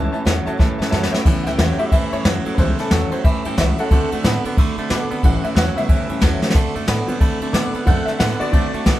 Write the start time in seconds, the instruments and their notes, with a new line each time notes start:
Already playing: clean electric guitar A2 E3, steel-string acoustic guitar A2 E3 G3 C#4 G4 A4, upright piano A5
0.12 clean electric guitar A2 E3, steel-string acoustic guitar C#4 G4 A4, honky-tonk piano C#5 E5 A5, closed hi-hat
0.16 steel-string acoustic guitar G3
0.25 upright bass E2, steel-string acoustic guitar A2 E3 G3 C#4 G4 A4, clean electric guitar A2 F#3, honky-tonk piano C#5 E5 A5, snare, closed hi-hat
0.45 clean electric guitar A2 F#3, steel-string acoustic guitar G3 C#4 G4 A4, honky-tonk piano C#5 E5 A5, muted upright bass stroke, closed hi-hat
0.57 upright bass F#2, clean electric guitar A2 E3, steel-string acoustic guitar G3 C#4 G4 A4, honky-tonk piano C#5 E5 A5, kick, snare
0.78 upright bass G2, clean electric guitar A2 E3, steel-string acoustic guitar G3 C#4 G4 A4, honky-tonk piano C#5 E5 A5, snare
0.90 upright bass F#2, steel-string acoustic guitar A2 E3 G3 C#4 G4 A4, clean electric guitar A2 F#3, honky-tonk piano C#5 E5 A5, snare
1.03 snare
1.11 clean electric guitar A2 F#3, steel-string acoustic guitar C#4 G4 A4, honky-tonk piano C#5 E5 G5, muted upright bass stroke, snare
1.15 steel-string acoustic guitar G3
1.24 upright bass A1, steel-string acoustic guitar A2 E3 G3 C#4 G4 A4, clean electric guitar A2 E3, honky-tonk piano C#3 G3 B3, kick, crash
1.43 upright bass C#2, clean electric guitar A2 E3, steel-string acoustic guitar A4, honky-tonk piano E5 F#5, snare, ride
1.47 steel-string acoustic guitar G3 C#4 G4, honky-tonk piano G5
1.58 upright bass E2, steel-string acoustic guitar A2 E3 G3 C#4 G4 A4, clean electric guitar A2 F#3, honky-tonk piano E5 G5, snare, ride
1.78 clean electric guitar A2 F#3, steel-string acoustic guitar G3 C#4 G4 A4, honky-tonk piano G4 E5, muted upright bass stroke, ride
1.91 clean electric guitar A2 E3, steel-string acoustic guitar G3 C#4 G4 A4, honky-tonk piano G4 E5, kick, ride
2.12 upright bass G2, clean electric guitar A2 E3, steel-string acoustic guitar G3 C#4 G4 A4, honky-tonk piano C#5, ride
2.25 upright bass F#2, steel-string acoustic guitar A2 E3 G3 C#4 G4 A4, clean electric guitar A2 F#3, snare, ride
2.45 clean electric guitar A2 F#3, steel-string acoustic guitar G3 C#4 G4 A4, muted upright bass stroke, ride
2.54 upright bass C#2, steel-string acoustic guitar A2, honky-tonk piano C#3 G3 B4, kick, ride
2.58 clean electric guitar A2 E3, steel-string acoustic guitar E3 G3 C#4 G4 A4, honky-tonk piano B3 C5
2.78 clean electric guitar A2 E3, steel-string acoustic guitar G3 C#4 G4 A4, honky-tonk piano A4, snare, ride
2.90 upright bass E2, steel-string acoustic guitar A2 E3 G3 C#4 G4 A4, clean electric guitar A2 F#3, snare, ride
3.10 clean electric guitar A2 F#3, steel-string acoustic guitar G3 C#4 G4 A4, honky-tonk piano C5, muted upright bass stroke, ride
3.23 upright bass F#2, clean electric guitar A2 E3, steel-string acoustic guitar G3 C#4 G4 A4, honky-tonk piano E5, kick, ride
3.44 upright bass G2, clean electric guitar A2 E3, steel-string acoustic guitar G3 C#4 G4 A4, honky-tonk piano G5, ride
3.57 upright bass C#2, steel-string acoustic guitar A2 E3 G3 C#4 G4 A4, clean electric guitar A2 F#3, honky-tonk piano E5, kick, snare, ride
3.77 clean electric guitar A2 F#3, steel-string acoustic guitar G3 C#4 G4 A4, honky-tonk piano A4 F#5, ride
3.89 upright bass D2, steel-string acoustic guitar D3 A3 C4 F#4 A4, clean electric guitar D3 A3, honky-tonk piano E3 F#3 C4, kick, ride
4.10 upright bass F#2, clean electric guitar D3 A3, steel-string acoustic guitar C4 F#4 A4, ride
4.22 upright bass A2, steel-string acoustic guitar D3 A3 C4 F#4 A4, clean electric guitar D3 B3, snare, ride
4.43 clean electric guitar D3 B3, steel-string acoustic guitar C4 F#4 A4, muted upright bass stroke, ride
4.56 upright bass B2, clean electric guitar D3 A3, steel-string acoustic guitar A3 C4 F#4 A4, honky-tonk piano B5, kick, ride
4.76 upright bass C3, clean electric guitar D3 A3, steel-string acoustic guitar C4 F#4 A4, ride
4.89 upright bass B2, steel-string acoustic guitar D3 A3 C4 F#4 A4, clean electric guitar D3 B3, honky-tonk piano D6, snare, ride
5.08 clean electric guitar D3 B3, steel-string acoustic guitar C4 F#4 A4, honky-tonk piano B5, muted upright bass stroke, ride
5.22 upright bass A1, steel-string acoustic guitar A2 E3 G3 C#4 G4 A4, clean electric guitar A2 E3, honky-tonk piano F#5, kick, ride
5.42 clean electric guitar A2 E3, steel-string acoustic guitar G3 C#4 G4 A4, honky-tonk piano E5, muted upright bass stroke, ride
5.54 upright bass E2, steel-string acoustic guitar A2 E3 G3 C#4 G4 A4, clean electric guitar A2 F#3, honky-tonk piano F#5, snare, ride
5.73 clean electric guitar A2 F#3, honky-tonk piano C#3 G3 B3 E5, steel-string acoustic guitar G3 C#4 G4 A4, muted upright bass stroke, ride
5.87 clean electric guitar A2 E3, steel-string acoustic guitar G3 C#4 G4 A4, kick, ride
6.08 upright bass G2, clean electric guitar A2 E3, steel-string acoustic guitar G3 C#4 G4 A4, ride
6.20 upright bass E2, steel-string acoustic guitar A2 E3 G3 C#4 G4 A4, clean electric guitar A2 F#3, kick, snare, ride
6.41 clean electric guitar A2 F#3, steel-string acoustic guitar G3 C#4 G4 A4, muted upright bass stroke, snare
6.50 steel-string acoustic guitar D3 A3, snare
6.54 upright bass D2, clean electric guitar D3 A3, steel-string acoustic guitar C4 F#4 A4, kick, ride
6.74 upright bass F#2, clean electric guitar D3 A3, steel-string acoustic guitar C4 F#4 A4, ride
6.85 upright bass A2, steel-string acoustic guitar D3 A3 C4 F#4 A4, clean electric guitar D3, snare, ride
6.89 clean electric guitar B3
7.06 clean electric guitar D3 B3, honky-tonk piano E3 F#3 C4, steel-string acoustic guitar C4 F#4 A4, muted upright bass stroke, ride
7.18 upright bass B2, clean electric guitar D3 A3, steel-string acoustic guitar A3 C4 F#4 A4, honky-tonk piano B5, kick, ride
7.40 upright bass C3, clean electric guitar D3 A3, steel-string acoustic guitar C4 F#4 A4, ride
7.52 upright bass B2, steel-string acoustic guitar D3 A3 C4 F#4 A4, clean electric guitar D3 B3, honky-tonk piano D6, snare, ride
7.73 clean electric guitar D3 B3, steel-string acoustic guitar C4 F#4 A4, honky-tonk piano B5, muted upright bass stroke, ride
7.85 upright bass F#2, steel-string acoustic guitar D3 A3 C4 F#4 A4, clean electric guitar D3 A3, honky-tonk piano E3 F#3 C4 F#5, kick, ride
8.05 clean electric guitar D3 A3, steel-string acoustic guitar C4 F#4 A4, honky-tonk piano E5, muted upright bass stroke, snare, ride
8.19 upright bass A2, steel-string acoustic guitar D3 A3 C4 F#4 A4, clean electric guitar D3 B3, honky-tonk piano F#5, snare, ride
8.39 clean electric guitar D3 B3, steel-string acoustic guitar C4 F#4 A4, honky-tonk piano F#4 D5, muted upright bass stroke, ride
8.51 clean electric guitar D3 A3, honky-tonk piano E3 F#3 C4, steel-string acoustic guitar A3 C4 F#4 A4, kick, ride
8.73 upright bass C3, clean electric guitar D3 A3, steel-string acoustic guitar C4 F#4 A4, ride
8.84 upright bass B2, steel-string acoustic guitar D3 A3 C4 F#4 A4, clean electric guitar D3 B3, kick, snare, ride